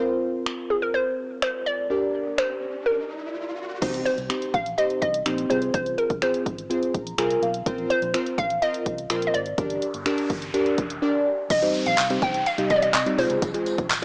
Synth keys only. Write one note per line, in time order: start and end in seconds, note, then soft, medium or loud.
0.00 1.86 C4 medium
0.00 1.86 F4 medium
0.00 1.87 A#4 medium
0.00 1.87 C5 medium
1.90 3.78 D4 medium
1.90 3.78 G4 medium
1.90 3.78 A#4 medium
1.90 3.79 D5 medium
3.82 4.08 C4 medium
3.82 4.08 D#4 medium
3.82 4.08 G4 medium
3.82 4.08 C5 loud
4.29 4.56 C4 medium
4.29 4.56 D#4 medium
4.29 4.56 G4 medium
4.29 4.56 C5 medium
4.78 5.04 C4 medium
4.78 5.04 D#4 medium
4.78 5.04 G4 medium
4.78 5.04 C5 medium
5.26 5.48 C4 medium
5.26 5.50 D#4 medium
5.26 5.50 G4 medium
5.26 5.49 C5 medium
5.49 6.07 C4 medium
5.49 6.08 F4 medium
5.49 6.08 G#4 medium
5.49 6.08 C5 medium
6.22 6.48 C4 medium
6.22 6.48 F4 medium
6.22 6.48 G#4 medium
6.22 6.48 C5 medium
6.70 6.96 C4 medium
6.70 6.96 F4 medium
6.70 6.96 G#4 medium
6.70 6.96 C5 medium
6.94 7.16 A#5 medium
7.18 7.44 C4 medium
7.18 7.44 F4 medium
7.18 7.44 G#4 medium
7.18 7.45 A#4 loud
7.18 7.41 G#5 medium
7.42 7.65 F5 medium
7.66 7.92 C4 loud
7.66 7.92 F4 medium
7.66 7.92 A#4 medium
7.66 7.93 C5 loud
8.14 8.40 C4 medium
8.14 8.40 F4 medium
8.14 8.40 A#4 medium
8.14 8.40 C5 medium
8.62 8.88 C4 medium
8.62 8.88 F4 medium
8.62 8.88 A#4 medium
8.62 8.88 D#5 medium
9.10 9.36 C4 medium
9.10 9.36 F4 medium
9.10 9.36 A#4 medium
9.10 9.37 C5 medium
9.58 9.84 D4 medium
9.58 9.84 G4 medium
9.58 9.84 A#4 medium
9.58 9.85 D5 medium
10.06 10.32 D4 medium
10.06 10.32 G4 medium
10.06 10.33 A#4 medium
10.06 10.33 D5 loud
10.54 10.80 D4 medium
10.54 10.80 G4 medium
10.54 10.80 A#4 medium
10.54 10.80 D5 loud
11.02 11.28 D4 loud
11.02 11.28 G4 medium
11.02 11.29 A#4 medium
11.02 11.29 D5 loud
11.62 11.88 G3 medium
11.62 11.88 C4 medium
11.62 11.88 D#4 medium
11.62 11.88 G4 medium
11.62 11.89 C5 medium
12.10 12.36 G3 medium
12.10 12.36 C4 medium
12.10 12.36 D#4 medium
12.10 12.36 G4 medium
12.10 12.37 C5 medium
12.58 12.84 G3 medium
12.58 12.84 C4 medium
12.58 12.84 D#4 medium
12.58 12.84 G4 medium
12.58 12.85 D#5 loud
13.06 13.18 G3 medium
13.06 13.17 C4 medium
13.06 13.18 D#4 medium
13.06 13.18 G4 medium
13.06 13.18 D5 medium
13.18 13.47 G#3 medium
13.18 13.47 C4 medium
13.18 13.47 F4 medium
13.18 13.47 G#4 medium
13.18 13.47 C5 medium
13.54 13.80 G#3 medium
13.54 13.80 C4 medium
13.54 13.80 F4 medium
13.54 13.80 G#4 medium
13.54 13.80 C5 medium